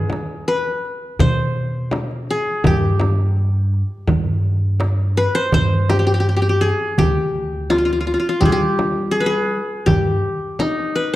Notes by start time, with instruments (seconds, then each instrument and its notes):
Already playing: qanun G#4 B4
0.10 darbuka tek, frame drum
0.48 qanun B4, darbuka ka
0.85 darbuka ka
1.19 upright bass B2, qanun C5, frame drum, darbuka dum
1.57 darbuka ka
1.91 darbuka tek, frame drum
2.11 darbuka ka
2.29 qanun G#4, darbuka ka
2.47 darbuka ka
2.64 upright bass G2, qanun G4, frame drum, darbuka dum
3.00 darbuka tek, frame drum
3.37 darbuka ka
3.74 darbuka ka
4.07 upright bass G2, frame drum, darbuka dum
4.45 darbuka ka
4.80 darbuka tek, frame drum
4.99 darbuka ka
5.17 qanun B4
5.35 qanun C5, darbuka ka
5.52 upright bass G2, qanun C5, darbuka dum, frame drum
5.89 qanun G4, darbuka tek, frame drum
5.99 qanun G4
6.07 qanun G4
6.14 qanun G4
6.20 qanun G4
6.25 qanun G4, darbuka ka
6.37 qanun G4
6.42 qanun G4
6.49 qanun G4
6.61 qanun G#4
6.98 upright bass D2, qanun G4, darbuka dum, frame drum
7.35 darbuka ka
7.70 qanun F4, darbuka tek, frame drum
7.78 qanun F4
7.85 qanun F4, darbuka ka
7.93 qanun F4
8.01 qanun F4
8.06 qanun F4, darbuka ka
8.14 qanun F4
8.20 qanun F4
8.25 qanun F4, darbuka ka
8.41 upright bass G3, qanun G4, darbuka dum, frame drum
8.45 qanun G#4
8.52 qanun G4
8.79 darbuka tek, frame drum
9.11 qanun G#4, darbuka ka
9.20 qanun B4
9.26 qanun G#4
9.86 upright bass G2, qanun G4, frame drum, darbuka dum
10.25 darbuka ka
10.59 qanun D#4, darbuka tek, frame drum
10.80 darbuka ka
10.96 qanun B4, darbuka ka